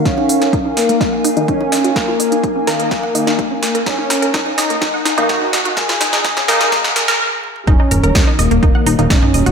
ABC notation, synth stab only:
X:1
M:4/4
L:1/16
Q:1/4=126
K:Ebm
V:1 name="Synth stab"
z8 z3 [E,B,E] z4 | z6 [E,B,E]4 [E,B,E]6- | [E,B,E]8- [E,B,E]3 [E,B,E] z4 | z6 [E,B,E]4 z6 |
z8 z3 [E,B,E] z4 |]